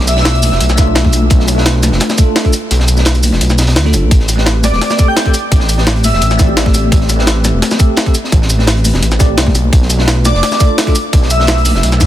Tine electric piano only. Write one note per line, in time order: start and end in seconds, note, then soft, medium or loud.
0.15 0.75 A3 medium
0.15 0.76 D4 medium
0.15 0.76 F4 medium
0.19 0.77 B4 medium
0.76 1.54 A3 loud
0.76 1.55 D4 medium
0.76 1.56 F4 medium
0.80 1.56 E5 loud
1.55 2.15 A3 medium
1.55 2.16 D4 medium
1.55 2.17 F4 medium
1.60 2.17 B4 loud
2.17 2.42 A3 medium
2.17 2.43 D4 medium
2.17 2.43 F4 medium
2.17 2.43 A4 loud
2.44 2.51 A3 loud
2.44 2.52 D4 medium
2.44 2.52 F4 medium
2.44 2.53 A4 loud
2.95 3.56 A3 medium
2.95 3.56 D4 medium
2.95 3.57 F4 medium
3.00 3.58 B4 medium
3.84 4.10 A3 medium
3.84 4.10 D4 medium
3.84 4.11 F4 medium
3.84 4.11 A4 medium
4.36 4.96 A3 medium
4.36 4.97 C4 medium
4.36 4.97 G4 medium
4.40 4.98 B4 loud
4.98 5.23 A3 medium
4.98 5.23 C4 medium
4.98 5.24 G4 medium
4.98 5.24 A4 medium
5.25 5.32 A3 loud
5.25 5.33 C4 medium
5.25 5.33 G4 medium
5.25 5.33 A4 loud
5.76 6.36 A3 medium
5.76 6.37 C4 medium
5.76 6.38 G4 medium
5.81 6.39 B4 medium
6.37 7.15 A3 loud
6.37 7.16 C4 medium
6.37 7.17 G4 medium
6.42 7.18 D5 loud
7.17 7.77 A3 medium
7.17 7.77 C4 medium
7.17 7.78 G4 medium
7.21 7.79 B4 loud
7.79 8.04 A3 medium
7.79 8.04 C4 medium
7.79 8.04 G4 medium
7.79 8.05 A4 loud
8.05 8.13 A3 loud
8.05 8.13 C4 medium
8.05 8.14 G4 medium
8.05 8.14 A4 loud
8.57 9.17 A3 medium
8.57 9.18 C4 medium
8.57 9.18 G4 medium
8.61 9.19 B4 medium
9.19 9.54 A3 loud
9.19 9.54 C4 medium
9.19 9.54 G4 medium
9.19 9.55 D5 loud
9.97 10.57 A3 loud
9.97 10.58 D4 medium
9.97 10.59 F4 medium
10.02 10.60 B4 loud
10.59 10.84 A3 medium
10.59 10.85 D4 medium
10.59 10.85 F4 medium
10.59 10.85 A4 medium
10.86 10.94 A3 medium
10.86 10.94 D4 medium
10.86 10.94 F4 medium
10.86 10.95 A4 loud
11.37 11.97 A3 medium
11.37 11.98 D4 medium
11.37 11.99 F4 medium
11.42 12.00 B4 medium
11.98 12.06 A3 loud
11.98 12.06 D4 medium
11.98 12.06 F4 medium
12.03 12.06 E5 loud